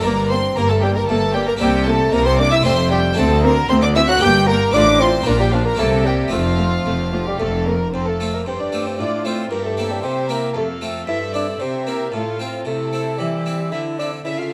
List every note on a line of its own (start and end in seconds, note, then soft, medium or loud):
0.00 0.50 G1 medium
0.00 1.54 A#3 medium
0.00 1.55 D4 medium
0.00 0.30 A#4 medium
0.00 0.30 A#5 loud
0.04 0.47 G2 medium
0.04 0.51 G2 medium
0.04 0.12 A#3 medium
0.04 0.33 A#3 medium
0.30 0.38 A#3 medium
0.30 0.60 C4 medium
0.30 0.38 C5 medium
0.30 0.56 C6 medium
0.55 1.02 G1 medium
0.55 1.02 G2 medium
0.55 1.00 G2 medium
0.55 0.63 A#3 medium
0.55 0.72 A#3 medium
0.55 0.69 A#4 medium
0.55 0.61 A#5 loud
0.69 0.85 A3 medium
0.69 0.82 A4 medium
0.69 0.75 A5 medium
0.82 0.98 G3 medium
0.82 0.90 A#3 medium
0.82 0.95 G4 medium
0.82 0.95 G5 medium
0.95 1.11 A#3 medium
0.95 1.08 A#4 medium
0.95 1.08 A#5 medium
1.07 1.54 G1 medium
1.07 1.54 G2 medium
1.07 1.51 G2 medium
1.07 1.37 A3 medium
1.07 1.16 A#3 medium
1.07 1.33 A4 medium
1.07 1.33 A5 loud
1.34 1.47 G3 medium
1.34 1.43 A#3 medium
1.34 1.47 G4 medium
1.34 1.47 G5 loud
1.46 1.54 A#3 medium
1.46 1.60 A#4 medium
1.46 1.53 A#5 loud
1.57 2.06 C2 medium
1.57 2.06 C3 medium
1.57 2.60 A#3 medium
1.57 1.69 A#3 medium
1.57 2.60 C4 medium
1.57 2.61 E4 medium
1.57 1.86 G4 medium
1.57 1.86 G5 loud
1.61 2.04 C3 medium
1.61 1.86 G3 medium
1.85 2.14 A3 medium
1.85 1.94 A#3 medium
1.85 2.12 A4 medium
1.85 2.12 A5 loud
2.12 2.59 C2 medium
2.12 2.58 C3 medium
2.12 2.55 C3 medium
2.12 2.20 A#3 medium
2.12 2.28 A#3 loud
2.12 2.25 A#4 medium
2.12 2.25 A#5 loud
2.24 2.41 C4 medium
2.24 2.38 C5 medium
2.24 2.38 C6 loud
2.38 2.46 A#3 medium
2.38 2.51 D4 medium
2.38 2.51 D5 medium
2.38 2.51 D6 loud
2.51 2.65 E4 medium
2.51 2.56 E5 medium
2.51 2.65 E6 loud
2.61 3.11 F1 medium
2.61 3.10 F2 medium
2.61 3.13 A3 medium
2.61 3.12 C4 medium
2.61 2.77 C4 medium
2.61 3.15 F4 medium
2.61 2.90 C5 medium
2.61 2.90 C6 loud
2.65 3.08 F2 medium
2.65 2.73 A3 medium
2.90 3.18 G3 medium
2.90 3.00 A3 medium
2.90 2.99 G4 medium
2.90 3.16 G5 loud
3.13 3.43 A3 medium
3.13 4.16 C4 medium
3.13 4.17 D4 medium
3.13 4.18 F#4 medium
3.13 3.43 A5 loud
3.17 3.63 D2 medium
3.17 3.60 D2 medium
3.17 3.26 C4 medium
3.17 3.43 A4 medium
3.43 3.55 A#3 medium
3.43 3.52 C4 medium
3.43 3.69 A#4 medium
3.43 3.68 A#5 loud
3.69 4.12 D2 medium
3.69 4.15 D2 medium
3.69 3.82 C4 medium
3.69 3.78 C4 medium
3.69 3.82 C5 medium
3.69 3.74 C6 loud
3.82 3.95 D4 medium
3.82 3.96 D5 medium
3.82 3.88 D6 loud
3.95 4.04 C4 medium
3.95 4.01 E4 medium
3.95 4.08 E5 medium
3.95 4.00 E6 loud
4.08 4.21 F#4 medium
4.08 4.22 F#5 medium
4.08 4.21 F#6 loud
4.17 4.67 G1 medium
4.17 4.70 A#3 medium
4.17 4.71 D4 medium
4.17 4.72 G4 medium
4.21 4.68 G2 medium
4.21 4.65 G2 medium
4.21 4.31 A#3 medium
4.21 4.49 G4 loud
4.21 4.47 G5 medium
4.21 4.47 G6 loud
4.48 4.75 A#3 medium
4.48 4.57 A#3 medium
4.48 4.74 A#4 medium
4.48 4.73 A#5 loud
4.71 5.20 A1 medium
4.71 5.20 A2 medium
4.71 5.17 A2 medium
4.71 5.23 C4 medium
4.71 5.01 D4 loud
4.71 5.24 F4 medium
4.71 4.82 F4 medium
4.71 4.82 D5 medium
4.71 4.99 D6 loud
5.00 5.28 C4 medium
5.00 5.09 F4 medium
5.00 5.26 C5 medium
5.00 5.27 C6 medium
5.22 5.74 A#3 medium
5.22 5.76 D4 medium
5.22 5.77 F4 medium
5.26 5.73 A#1 medium
5.26 5.70 A#2 medium
5.26 5.73 A#2 medium
5.26 5.39 A#3 medium
5.26 5.35 D4 medium
5.26 5.39 A#4 medium
5.26 5.39 A#5 loud
5.39 5.54 G3 medium
5.39 5.52 G4 medium
5.39 5.53 G5 loud
5.53 5.64 F3 medium
5.53 5.61 D4 medium
5.53 5.66 F4 medium
5.53 5.66 F5 medium
5.65 5.78 A#3 medium
5.65 5.79 A#4 medium
5.65 5.79 A#5 medium
5.75 6.26 C3 medium
5.75 6.07 A3 medium
5.75 6.29 A#3 medium
5.75 5.87 A#3 medium
5.75 6.28 C4 medium
5.75 6.30 E4 medium
5.79 6.26 C2 medium
5.79 6.23 C3 medium
5.79 6.06 A4 medium
5.79 5.87 A5 loud
6.05 6.32 G3 medium
6.05 6.14 A#3 medium
6.05 6.33 G4 medium
6.05 6.14 G5 medium
6.28 7.87 A3 medium
6.28 7.88 C4 medium
6.28 7.89 F4 medium
6.32 6.80 F1 medium
6.32 6.77 F2 medium
6.32 6.80 F2 medium
6.32 7.11 F3 medium
6.32 6.40 A3 medium
6.32 7.12 F4 medium
6.32 7.64 F5 medium
6.59 6.67 A3 medium
6.86 7.33 F1 medium
6.86 7.30 F2 medium
6.86 7.33 F2 medium
6.86 6.94 A3 medium
7.13 7.26 F3 medium
7.13 7.21 A3 medium
7.13 7.25 F4 medium
7.26 7.38 G3 medium
7.26 7.39 G4 medium
7.39 7.87 F1 medium
7.39 7.87 F2 medium
7.39 7.84 F2 medium
7.39 7.68 A3 medium
7.39 7.48 A3 medium
7.39 7.66 A4 medium
7.66 7.75 A3 medium
7.66 7.93 A#3 medium
7.66 7.93 A#4 medium
7.93 8.42 F2 soft
7.93 8.43 F2 soft
7.93 8.09 C4 medium
7.93 8.43 A4 soft
7.93 8.06 C5 medium
7.93 8.43 F5 soft
8.06 8.36 A3 medium
8.06 8.33 A4 soft
8.20 8.39 A3 soft
8.20 8.39 C4 soft
8.20 8.59 F4 soft
8.33 8.47 A#3 medium
8.33 8.46 A#4 soft
8.46 8.95 G2 soft
8.46 8.99 G2 soft
8.46 8.53 C4 medium
8.46 8.98 G4 soft
8.46 9.51 C5 soft
8.46 8.59 C5 medium
8.59 8.88 D4 medium
8.59 8.86 D5 soft
8.72 9.10 A3 soft
8.72 9.10 C4 soft
8.72 9.11 F4 soft
8.86 9.01 C4 medium
8.86 8.99 C5 soft
8.99 9.47 A2 soft
8.99 9.52 A2 soft
8.99 9.27 D4 medium
8.99 9.51 F4 soft
8.99 9.24 D5 medium
9.24 9.44 A3 soft
9.24 9.44 C4 soft
9.24 9.51 C4 medium
9.24 9.44 F4 soft
9.24 9.50 C5 medium
9.50 9.99 G2 soft
9.50 10.02 G2 soft
9.50 9.64 A#3 medium
9.50 10.55 G4 soft
9.50 9.63 A#4 medium
9.50 10.54 E5 soft
9.63 9.93 A3 medium
9.63 9.90 A4 soft
9.77 10.15 A#3 soft
9.77 10.15 C4 soft
9.77 10.15 E4 soft
9.90 10.06 G3 medium
9.90 10.03 G4 soft
10.03 10.54 C3 soft
10.03 10.51 C3 soft
10.03 10.32 C4 medium
10.03 10.29 C5 medium
10.29 10.48 A#3 soft
10.29 10.56 A#3 medium
10.29 10.48 C4 soft
10.29 10.49 E4 soft
10.29 10.55 A#4 medium
10.53 11.03 F2 soft
10.53 11.07 F2 soft
10.53 10.68 A3 medium
10.53 10.61 A4 soft
10.53 11.58 A4 soft
10.53 11.08 F5 soft
10.81 11.00 A3 soft
10.81 11.01 C4 soft
10.81 11.01 F4 soft
11.06 11.59 G2 medium
11.06 11.56 G2 soft
11.06 11.20 E4 medium
11.06 11.60 C5 soft
11.06 11.31 E5 medium
11.33 11.72 C4 soft
11.33 11.47 D4 medium
11.33 11.72 E4 soft
11.33 11.60 D5 medium
11.59 12.12 C3 soft
11.59 12.09 C3 soft
11.59 11.89 C4 medium
11.59 12.12 G4 soft
11.59 11.86 C5 medium
11.59 12.12 E5 soft
11.85 12.15 A#3 medium
11.85 12.06 C4 soft
11.85 12.06 E4 soft
11.85 12.12 A#4 soft
12.12 12.62 A2 soft
12.12 12.65 A2 soft
12.12 12.40 A3 medium
12.12 12.65 F4 soft
12.12 12.38 A4 soft
12.12 12.66 F5 soft
12.39 12.59 C4 soft
12.39 12.66 C4 medium
12.39 12.59 F4 soft
12.39 12.48 C5 soft
12.65 13.15 C3 soft
12.65 13.18 C3 soft
12.65 13.20 A3 medium
12.65 14.05 E4 soft
12.65 13.18 A4 medium
12.65 14.05 C5 soft
12.93 13.31 C4 soft
12.93 13.31 E4 soft
13.18 13.72 E3 soft
13.18 13.68 E3 soft
13.18 13.73 G3 soft
13.18 13.72 G4 soft
13.46 13.84 C4 soft
13.46 13.84 E4 soft
13.72 14.25 D3 soft
13.72 14.21 D3 soft
13.72 13.98 E4 medium
13.72 13.80 E5 soft
13.99 14.18 C4 soft
13.99 14.11 D4 medium
13.99 14.19 E4 soft
13.99 14.07 D5 soft
14.25 14.53 C#3 medium
14.25 14.53 C#3 soft
14.25 14.40 E4 medium
14.25 14.53 A4 soft
14.25 14.38 E5 medium
14.25 14.53 E5 soft
14.38 14.53 F4 medium
14.38 14.53 F5 soft